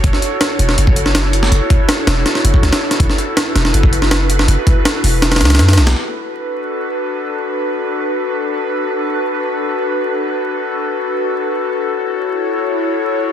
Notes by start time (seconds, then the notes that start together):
Already playing: F#4 A4 C#5
0.03 F#1 E4, kick, closed hi-hat
0.13 snare
0.22 closed hi-hat
0.41 snare, closed hi-hat
0.59 E1, closed hi-hat
0.69 snare
0.78 F#1, closed hi-hat
0.87 kick
0.96 closed hi-hat
1.06 snare
1.15 snare, closed hi-hat
1.33 closed hi-hat
1.43 snare
1.51 F#1, closed hi-hat
1.70 kick, closed hi-hat
1.89 snare, closed hi-hat
2.07 E1, snare, closed hi-hat
2.26 snare, closed hi-hat
2.35 snare
2.44 F#1, closed hi-hat
2.54 kick
2.62 C#2, snare, closed hi-hat
2.73 snare, closed hi-hat
2.91 snare, closed hi-hat
2.99 F#1 B4, kick, closed hi-hat
3.10 snare
3.18 closed hi-hat
3.37 snare, closed hi-hat
3.55 E1, snare, closed hi-hat
3.65 snare
3.74 F#1, closed hi-hat
3.83 kick
3.93 closed hi-hat
4.02 snare
4.11 snare, closed hi-hat
4.30 closed hi-hat
4.39 snare
4.48 F#1, closed hi-hat
4.67 kick, closed hi-hat
4.85 snare, closed hi-hat
5.04 E1, open hi-hat
5.22 snare, closed hi-hat
5.32 snare, closed hi-hat
5.36 snare, closed hi-hat
5.40 C#2, snare, closed hi-hat
5.45 snare, closed hi-hat
5.50 snare, closed hi-hat
5.55 snare, closed hi-hat
5.59 F#2, snare, closed hi-hat
5.69 snare, closed hi-hat
5.73 snare, closed hi-hat
5.78 B1, snare, closed hi-hat
5.87 snare, closed hi-hat
5.95 D4 F#4 A4 B4
11.88 E4 C#5